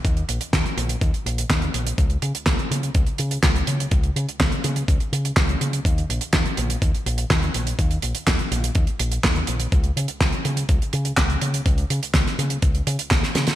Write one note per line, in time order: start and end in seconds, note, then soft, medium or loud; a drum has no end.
0.05 0.22 D#2 loud
0.05 kick loud
0.05 closed hi-hat medium
0.17 closed hi-hat soft
0.29 0.38 A#1 medium
0.29 closed hi-hat loud
0.41 closed hi-hat medium
0.53 0.62 D#2 loud
0.53 kick loud
0.53 snare loud
0.53 clap loud
0.53 closed hi-hat medium
0.66 closed hi-hat soft
0.77 0.95 A#1 loud
0.77 closed hi-hat medium
0.89 closed hi-hat medium
1.01 1.10 D#2 medium
1.01 kick loud
1.01 closed hi-hat medium
1.14 closed hi-hat soft
1.25 1.43 A#1 medium
1.25 closed hi-hat medium
1.38 closed hi-hat medium
1.50 1.67 D#2 loud
1.50 kick loud
1.50 snare loud
1.50 clap loud
1.50 closed hi-hat medium
1.62 closed hi-hat soft
1.74 1.92 A#1 medium
1.74 closed hi-hat medium
1.87 closed hi-hat medium
1.98 2.16 C#2 loud
1.98 kick loud
1.98 closed hi-hat medium
2.10 closed hi-hat soft
2.22 2.31 C#3 medium
2.22 closed hi-hat medium
2.35 closed hi-hat medium
2.46 2.55 C#2 medium
2.46 kick loud
2.46 snare loud
2.46 clap loud
2.46 closed hi-hat medium
2.59 closed hi-hat soft
2.71 2.88 C#3 medium
2.71 closed hi-hat loud
2.83 closed hi-hat medium
2.95 3.04 C#2 loud
2.95 kick loud
2.95 closed hi-hat medium
3.06 closed hi-hat soft
3.18 3.37 C#3 loud
3.18 closed hi-hat medium
3.31 closed hi-hat medium
3.43 3.61 C#2 medium
3.43 kick loud
3.43 snare loud
3.43 clap medium
3.43 closed hi-hat medium
3.56 closed hi-hat soft
3.67 3.85 C#3 medium
3.67 closed hi-hat medium
3.80 closed hi-hat medium
3.91 4.09 C#2 medium
3.91 kick loud
3.91 closed hi-hat medium
4.03 closed hi-hat soft
4.16 4.25 C#3 medium
4.16 closed hi-hat medium
4.29 closed hi-hat medium
4.40 4.49 C#2 medium
4.40 kick loud
4.40 snare loud
4.40 clap medium
4.40 closed hi-hat medium
4.52 closed hi-hat soft
4.64 4.82 C#3 loud
4.64 closed hi-hat medium
4.76 closed hi-hat medium
4.88 4.97 C#2 medium
4.88 kick loud
4.88 closed hi-hat medium
5.00 closed hi-hat soft
5.12 5.30 C#3 medium
5.12 closed hi-hat medium
5.25 closed hi-hat medium
5.37 5.54 C#2 loud
5.37 kick loud
5.37 snare loud
5.37 clap loud
5.37 closed hi-hat medium
5.49 closed hi-hat soft
5.61 5.79 C#3 medium
5.61 closed hi-hat medium
5.73 closed hi-hat medium
5.85 6.03 D#2 medium
5.85 kick loud
5.85 closed hi-hat medium
5.98 closed hi-hat soft
6.09 6.18 A#1 medium
6.09 closed hi-hat medium
6.21 closed hi-hat medium
6.33 6.42 D#2 loud
6.33 kick loud
6.33 snare loud
6.33 clap medium
6.33 closed hi-hat medium
6.46 closed hi-hat soft
6.57 6.75 A#1 medium
6.57 closed hi-hat medium
6.70 closed hi-hat medium
6.82 6.91 D#2 loud
6.82 kick loud
6.82 closed hi-hat medium
6.95 closed hi-hat soft
7.06 7.24 A#1 medium
7.06 closed hi-hat medium
7.18 closed hi-hat medium
7.30 7.48 D#2 medium
7.30 kick loud
7.30 snare loud
7.30 clap medium
7.30 closed hi-hat medium
7.43 closed hi-hat soft
7.54 7.72 A#1 medium
7.54 closed hi-hat medium
7.67 closed hi-hat medium
7.79 7.96 D#2 loud
7.79 kick loud
7.79 closed hi-hat medium
7.91 closed hi-hat soft
8.02 8.12 A#1 medium
8.02 closed hi-hat medium
8.15 closed hi-hat medium
8.27 8.36 D#2 loud
8.27 kick loud
8.27 snare loud
8.27 clap loud
8.27 closed hi-hat medium
8.39 closed hi-hat soft
8.51 8.69 A#1 medium
8.51 closed hi-hat medium
8.64 closed hi-hat medium
8.75 8.84 D#2 loud
8.75 kick loud
8.75 closed hi-hat medium
8.87 closed hi-hat soft
9.00 9.17 A#1 medium
9.00 closed hi-hat loud
9.12 closed hi-hat medium
9.24 9.42 D#2 medium
9.24 kick loud
9.24 snare loud
9.24 clap medium
9.24 closed hi-hat medium
9.35 closed hi-hat soft
9.47 9.66 A#1 medium
9.47 closed hi-hat loud
9.60 closed hi-hat medium
9.72 9.90 C#2 loud
9.72 kick loud
9.72 closed hi-hat medium
9.84 closed hi-hat soft
9.96 10.05 C#3 medium
9.96 closed hi-hat loud
10.08 closed hi-hat medium
10.21 10.29 C#2 loud
10.21 kick loud
10.21 snare loud
10.21 clap loud
10.21 closed hi-hat medium
10.32 closed hi-hat soft
10.45 10.63 C#3 loud
10.45 closed hi-hat medium
10.57 closed hi-hat medium
10.69 10.78 C#2 loud
10.69 kick loud
10.69 closed hi-hat medium
10.82 closed hi-hat soft
10.93 11.11 C#3 loud
10.93 closed hi-hat medium
11.05 closed hi-hat medium
11.17 11.35 C#2 loud
11.17 kick loud
11.17 snare loud
11.17 clap loud
11.17 closed hi-hat medium
11.30 closed hi-hat soft
11.41 11.59 C#3 medium
11.41 closed hi-hat medium
11.54 closed hi-hat medium
11.66 11.83 C#2 loud
11.66 kick loud
11.66 closed hi-hat medium
11.78 closed hi-hat soft
11.90 11.99 C#3 medium
11.90 closed hi-hat medium
12.03 closed hi-hat medium
12.14 12.23 C#2 loud
12.14 kick loud
12.14 snare loud
12.14 clap medium
12.14 closed hi-hat medium
12.27 snare soft
12.27 closed hi-hat soft
12.38 12.56 C#3 medium
12.38 closed hi-hat medium
12.50 closed hi-hat medium
12.62 12.80 C#2 medium
12.62 kick loud
12.62 closed hi-hat medium
12.75 closed hi-hat soft
12.87 12.96 C#3 loud
12.87 closed hi-hat loud
12.99 closed hi-hat medium
13.11 13.20 C#2 medium
13.11 kick loud
13.11 snare loud
13.11 clap medium
13.11 closed hi-hat medium
13.23 snare medium
13.23 closed hi-hat soft
13.35 13.44 C#3 medium
13.35 snare medium
13.35 closed hi-hat loud
13.47 snare medium
13.47 closed hi-hat medium